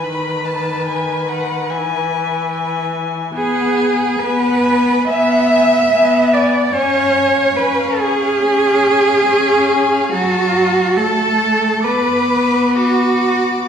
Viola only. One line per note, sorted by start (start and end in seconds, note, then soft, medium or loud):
0.03 1.73 D#3 medium
1.71 3.34 E3 medium
3.34 4.09 B3 medium
4.19 4.98 B3 medium
5.09 5.83 B3 medium
5.92 6.64 B3 medium
6.73 7.47 C#4 medium
7.56 8.32 C#4 medium
8.42 9.16 C#4 medium
9.26 10.01 C#4 medium
10.13 10.98 F#3 medium
10.97 11.86 A3 medium
11.84 13.68 B3 medium